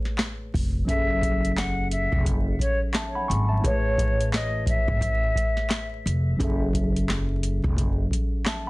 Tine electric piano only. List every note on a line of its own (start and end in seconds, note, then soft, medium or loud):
0.00 0.82 A2 medium
0.00 0.83 A3 medium
0.00 0.84 G#4 medium
0.00 0.85 B4 medium
0.00 0.86 C#5 medium
0.85 3.58 F#3 medium
0.85 3.59 C#4 medium
0.85 3.60 G#4 medium
0.91 3.61 A4 medium
0.91 2.93 E5 medium
2.96 3.16 E5 medium
2.96 3.15 A5 medium
3.15 3.29 F#5 medium
3.15 3.28 B5 medium
3.28 3.49 G#5 medium
3.28 3.49 C#6 medium
3.49 3.82 E5 medium
3.49 3.82 A5 medium
3.60 6.34 A2 medium
3.60 6.35 A3 medium
3.60 6.36 G#4 medium
3.66 6.37 B4 medium
3.66 6.38 C#5 medium
6.37 8.70 F#3 medium
6.37 8.70 C#4 medium
6.37 8.70 G#4 medium
6.42 8.70 A4 medium
6.42 8.45 E5 medium
8.47 8.67 E5 medium
8.47 8.67 A5 medium